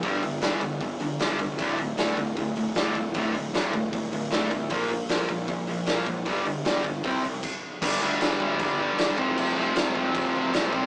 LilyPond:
<<
  \new Staff \with { instrumentName = "Distorted electric guitar" } { \clef bass \time 4/4 \key g \dorian \tempo 4 = 154 <g, d g>8 <g, d>8 <g, d g>8 <g, d>8 <g, d>8 <g, d>8 <g, d g>8 <g, d>8 | <d, a, d>8 <d, a,>8 <d, a, d>8 <d, a,>8 <d, a,>8 <d, a,>8 <d, a, d>8 <d, a,>8 | <d, a, d>8 <d, a,>8 <d, a, d>8 <d, a,>8 <d, a,>8 <d, a,>8 <d, a, d>8 <d, a,>8 | <bes, f bes>8 <bes, f>8 <bes, f bes>8 <bes, f>8 <bes, f>8 <bes, f>8 <bes, f bes>8 <bes, f>8 |
<g, d g>8 <g, d>8 <g, d g>8 <g, d>8 <c g c'>8 <c g>8 r4 | <g, d g>8 <g, d g>8 <g, d g>8 <g, d g>8 <g, d g>8 <g, d g>8 <g, d g>8 <f, c f>8 | <f, c f>8 <f, c f>8 <f, c f>8 <f, c f>8 <f, c f>8 <f, c f>8 <f, c f>8 <c g c'>8 | }
  \new Staff \with { instrumentName = "Overdriven electric guitar" } { \clef bass \time 4/4 \key g \dorian <g, d g>8 <g, d>8 <g, d g>8 <g, d>8 <g, d>8 <g, d>8 <g, d g>8 <g, d>8 | <d, a, d>8 <d, a,>8 <d, a, d>8 <d, a,>8 <d, a,>8 <d, a,>8 <d, a, d>8 <d, a,>8 | <d, a, d>8 <d, a,>8 <d, a, d>8 <d, a,>8 <d, a,>8 <d, a,>8 <d, a, d>8 <d, a,>8 | <bes, f bes>8 <bes, f>8 <bes, f bes>8 <bes, f>8 <bes, f>8 <bes, f>8 <bes, f bes>8 <bes, f>8 |
<g, d g>8 <g, d>8 <g, d g>8 <g, d>8 <c g c'>8 <c g>8 r4 | <g, d g>8 <g, d g>8 <g, d g>8 <g, d g>8 <g, d g>8 <g, d g>8 <g, d g>8 <f, c f>8 | <f, c f>8 <f, c f>8 <f, c f>8 <f, c f>8 <f, c f>8 <f, c f>8 <f, c f>8 <c g c'>8 | }
  \new Staff \with { instrumentName = "Picked electric bass" } { \clef bass \time 4/4 \key g \dorian g,,8 g,,8 g,,8 g,,8 g,,8 g,,8 g,,8 c,8 | d,,4 d,,8 d,,8 d,,8 d,,8 d,,8 d,,8 | d,,8 d,,8 d,,8 d,,8 d,,8 d,,8 d,,8 d,8 | bes,,4 bes,,8 bes,,8 bes,,8 bes,,8 bes,,8 bes,,8 |
g,,8 g,,8 g,,8 g,,8 c,8 c,8 r4 | g,,8 d,8 g,,8 d,8 g,,4 g,,8 f,,8 | f,,8 f,,8 f,,8 f,,8 f,,8 d,,8 b,,8 c,8 | }
  \new DrumStaff \with { instrumentName = "Drums" } \drummode { \time 4/4 <hho bd>8 hho8 <hho sn>8 <hho bd>8 <hho bd>8 hho8 <hho sn>8 <hho bd>8 | <hho bd>8 hho8 <hho sn>8 <hho bd>8 <hho bd>8 hho8 <hho sn>8 <hho bd>8 | <hho bd>8 hho8 <hho sn>8 <hho bd>8 <hho bd>8 hho8 <hho sn>8 <hho bd>8 | <hho bd>8 hho8 <hho sn>8 <hho bd>8 <hho bd>8 hho8 <hho sn>8 <hho bd>8 |
<hho bd>8 hho8 <hho sn>8 <hho bd>8 <hho bd>8 hho8 <cymc bd>4 | <cymc bd>4 <cymc sn>8 bd8 <cymc bd>4 <cymc sn>8 bd8 | cymc4 <cymc sn>8 bd8 <cymc bd>4 <cymc sn>8 bd8 | }
>>